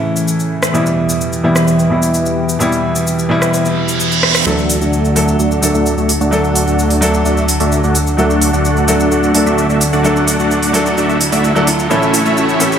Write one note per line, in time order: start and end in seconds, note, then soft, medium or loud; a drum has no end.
0.00 0.71 A2 medium
0.00 0.77 C#3 medium
0.00 0.74 E3 medium
0.00 4.42 E3 medium
0.00 0.77 A3 medium
0.00 0.71 C#4 medium
0.00 0.75 E4 loud
0.00 0.70 A4 medium
0.16 shaker medium
0.28 shaker medium
0.40 shaker soft
0.63 cross-stick medium
0.63 shaker medium
0.73 4.43 E2 medium
0.73 1.41 B2 medium
0.73 1.41 E3 medium
0.73 1.41 G3 medium
0.73 4.43 B3 medium
0.73 1.42 E4 medium
0.73 4.43 G4 medium
0.73 shaker medium
0.86 shaker soft
1.09 shaker medium
1.21 shaker medium
1.33 shaker soft
1.43 1.87 B2 medium
1.43 1.88 E3 medium
1.43 1.88 G3 medium
1.43 1.88 E4 medium
1.56 cross-stick medium
1.56 shaker medium
1.68 shaker medium
1.79 shaker soft
1.89 2.57 B2 medium
1.89 2.57 E3 medium
1.89 2.58 G3 medium
1.89 2.58 E4 medium
2.02 shaker medium
2.14 shaker medium
2.26 shaker soft
2.49 shaker medium
2.59 3.27 B2 medium
2.59 3.27 E3 medium
2.59 3.27 G3 medium
2.59 3.28 E4 loud
2.59 shaker medium
2.72 shaker soft
2.96 shaker medium
3.07 shaker medium
3.19 shaker soft
3.29 4.43 B2 medium
3.29 4.43 E3 medium
3.29 4.44 G3 medium
3.29 4.44 E4 loud
3.42 cross-stick medium
3.42 shaker medium
3.53 reverse cymbal medium
3.53 shaker medium
3.65 shaker soft
3.88 shaker medium
4.00 shaker medium
4.12 shaker soft
4.23 cross-stick medium
4.35 cross-stick medium
4.35 shaker medium
4.45 4.79 D2 medium
4.45 11.86 D3 medium
4.45 5.13 F#3 medium
4.45 5.13 A3 medium
4.45 4.78 A3 medium
4.45 11.86 D4 medium
4.45 4.78 D4 medium
4.45 5.13 D4 medium
4.45 11.86 F#4 medium
4.45 4.78 F#4 medium
4.45 11.86 A4 medium
4.45 5.14 A4 medium
4.45 4.78 D5 medium
4.45 4.78 F#5 medium
4.45 riser medium
4.45 shaker soft
4.58 shaker soft
4.70 open hi-hat loud
4.70 shaker medium
4.81 5.37 D2 loud
4.81 5.37 A3 medium
4.81 5.37 D4 medium
4.81 5.37 F#4 medium
4.81 5.37 D5 medium
4.81 5.37 F#5 medium
4.81 shaker soft
4.93 shaker soft
5.05 shaker soft
5.15 5.59 F#3 medium
5.15 5.60 A3 medium
5.15 5.60 D4 medium
5.15 5.60 A4 medium
5.15 open hi-hat loud
5.15 shaker medium
5.28 shaker soft
5.39 5.60 D2 medium
5.39 5.60 A3 medium
5.39 5.60 D4 medium
5.39 5.60 F#4 medium
5.39 5.60 D5 medium
5.39 5.60 F#5 loud
5.39 shaker soft
5.51 shaker soft
5.61 5.72 D2 medium
5.61 6.29 F#3 medium
5.61 6.29 A3 medium
5.61 5.72 A3 medium
5.61 5.72 D4 medium
5.61 6.30 D4 medium
5.61 5.72 F#4 medium
5.61 6.30 A4 medium
5.61 5.72 D5 medium
5.61 open hi-hat loud
5.61 shaker medium
5.74 5.95 D2 medium
5.74 5.95 A3 loud
5.74 5.95 D4 medium
5.74 5.95 F#4 medium
5.74 5.95 D5 medium
5.74 5.95 E5 loud
5.74 shaker soft
5.86 shaker soft
5.97 6.18 D2 medium
5.97 6.11 A3 medium
5.97 6.11 D4 medium
5.97 6.11 F#4 medium
5.97 6.11 D5 medium
5.97 6.11 E5 medium
5.97 shaker soft
6.09 open hi-hat loud
6.09 shaker medium
6.21 6.65 D2 medium
6.21 6.64 A3 loud
6.21 6.64 D4 medium
6.21 6.64 F#4 medium
6.21 6.64 D5 medium
6.21 6.64 F#5 loud
6.21 shaker soft
6.31 6.99 F#3 medium
6.31 6.99 A3 medium
6.31 6.99 D4 medium
6.31 7.00 A4 loud
6.31 shaker soft
6.44 shaker soft
6.56 open hi-hat loud
6.56 shaker medium
6.67 7.23 D2 loud
6.67 7.23 A3 medium
6.67 7.23 D4 medium
6.67 7.23 F#4 medium
6.67 7.23 D5 medium
6.67 7.23 F#5 medium
6.67 shaker soft
6.79 shaker soft
6.90 open hi-hat medium
6.90 shaker soft
7.01 8.15 F#3 loud
7.01 8.15 A3 medium
7.01 8.16 D4 medium
7.01 8.16 A4 loud
7.01 open hi-hat loud
7.01 shaker medium
7.14 shaker soft
7.25 7.58 D2 loud
7.25 7.45 A3 medium
7.25 7.45 D4 medium
7.25 7.45 F#4 medium
7.25 7.45 D5 medium
7.25 7.45 E5 loud
7.25 shaker soft
7.37 shaker soft
7.49 open hi-hat loud
7.49 shaker medium
7.60 7.81 D2 loud
7.60 7.80 A3 medium
7.60 7.80 D4 medium
7.60 7.80 F#4 medium
7.60 7.80 D5 medium
7.60 7.80 E5 loud
7.60 open hi-hat medium
7.60 shaker soft
7.72 shaker soft
7.83 8.16 D2 medium
7.83 7.97 A3 medium
7.83 7.97 D4 medium
7.83 7.97 F#4 medium
7.83 7.97 D5 medium
7.83 7.97 F#5 medium
7.83 shaker soft
7.95 open hi-hat loud
7.95 shaker medium
8.07 shaker soft
8.17 8.51 D2 loud
8.17 8.85 F#3 medium
8.17 8.85 A3 medium
8.17 8.50 A3 medium
8.17 8.50 D4 medium
8.17 8.86 D4 medium
8.17 8.50 F#4 medium
8.17 8.86 A4 medium
8.17 8.50 D5 medium
8.17 8.50 F#5 medium
8.17 shaker soft
8.30 shaker soft
8.42 open hi-hat loud
8.42 shaker medium
8.53 9.09 D2 loud
8.53 9.09 A3 medium
8.53 9.09 D4 medium
8.53 9.09 F#4 medium
8.53 9.09 D5 medium
8.53 9.09 F#5 loud
8.53 shaker soft
8.65 shaker soft
8.77 shaker soft
8.87 9.32 F#3 medium
8.87 9.32 A3 medium
8.87 9.32 D4 medium
8.87 9.32 A4 medium
8.87 open hi-hat loud
8.87 shaker medium
9.00 shaker soft
9.11 9.32 D2 medium
9.11 9.32 A3 medium
9.11 9.32 D4 medium
9.11 9.32 F#4 medium
9.11 9.32 D5 medium
9.11 9.32 F#5 loud
9.11 shaker soft
9.23 shaker soft
9.33 9.44 D2 medium
9.33 10.01 F#3 medium
9.33 10.01 A3 medium
9.33 9.45 A3 medium
9.33 9.45 D4 medium
9.33 10.02 D4 medium
9.33 9.45 F#4 medium
9.33 10.02 A4 medium
9.33 9.45 D5 medium
9.33 9.45 A5 medium
9.33 open hi-hat loud
9.33 shaker medium
9.46 9.67 D2 loud
9.46 9.67 A3 medium
9.46 9.67 D4 medium
9.46 9.67 F#4 medium
9.46 9.67 D5 medium
9.46 9.67 E5 loud
9.46 shaker soft
9.58 shaker soft
9.69 9.90 D2 medium
9.69 9.83 A3 medium
9.69 9.83 D4 medium
9.69 9.83 F#4 medium
9.69 9.83 D5 medium
9.69 9.83 E5 medium
9.69 shaker soft
9.81 open hi-hat loud
9.81 shaker medium
9.93 10.37 D2 loud
9.93 10.37 A3 loud
9.93 10.37 D4 medium
9.93 10.37 F#4 medium
9.93 10.37 D5 medium
9.93 10.37 F#5 loud
9.93 shaker soft
10.03 10.71 F#3 medium
10.03 10.71 A3 medium
10.03 10.72 D4 medium
10.03 10.72 A4 loud
10.03 shaker soft
10.16 shaker soft
10.28 open hi-hat loud
10.28 shaker medium
10.39 10.95 D2 loud
10.39 10.95 A3 medium
10.39 10.95 D4 medium
10.39 10.95 F#4 medium
10.39 10.95 D5 medium
10.39 10.95 F#5 medium
10.39 shaker soft
10.51 shaker soft
10.63 open hi-hat medium
10.63 shaker soft
10.73 11.53 F#3 medium
10.73 11.53 A3 medium
10.73 11.53 D4 medium
10.73 11.54 A4 loud
10.73 open hi-hat loud
10.73 shaker medium
10.86 shaker soft
10.97 11.30 D2 loud
10.97 11.17 A3 medium
10.97 11.17 D4 medium
10.97 11.17 F#4 medium
10.97 11.17 D5 medium
10.97 11.17 E5 loud
10.97 shaker soft
11.09 shaker soft
11.21 open hi-hat loud
11.21 shaker medium
11.32 11.53 D2 loud
11.32 11.52 A3 medium
11.32 11.52 D4 medium
11.32 11.52 F#4 medium
11.32 11.52 D5 medium
11.32 11.52 E5 loud
11.32 open hi-hat medium
11.32 shaker soft
11.44 shaker soft
11.55 11.88 D2 medium
11.55 11.65 F#3 medium
11.55 11.65 A3 medium
11.55 11.69 A3 medium
11.55 11.69 D4 medium
11.55 11.65 D4 medium
11.55 11.69 F#4 medium
11.55 11.65 A4 loud
11.55 11.69 D5 medium
11.55 11.69 F#5 medium
11.55 shaker soft
11.67 open hi-hat loud
11.67 shaker medium
11.79 shaker soft
11.89 12.23 A1 loud
11.89 12.57 A2 medium
11.89 12.57 E3 medium
11.89 12.57 A3 medium
11.89 12.79 A3 medium
11.89 12.23 A3 medium
11.89 12.23 C#4 medium
11.89 12.79 C#4 medium
11.89 12.58 C#4 medium
11.89 12.23 E4 medium
11.89 12.79 E4 medium
11.89 12.58 A4 medium
11.89 12.23 C#5 medium
11.89 12.23 E5 medium
11.89 shaker soft
12.02 shaker soft
12.14 open hi-hat loud
12.14 shaker medium
12.25 12.79 A1 loud
12.25 12.79 A3 medium
12.25 12.79 C#4 medium
12.25 12.79 E4 medium
12.25 12.79 C#5 medium
12.25 12.79 E5 loud
12.25 shaker soft
12.37 shaker soft
12.49 shaker soft
12.59 12.79 A2 medium
12.59 12.79 E3 medium
12.59 12.79 A3 medium
12.59 12.79 C#4 medium
12.59 12.79 A4 medium
12.59 open hi-hat loud
12.59 shaker medium
12.72 shaker soft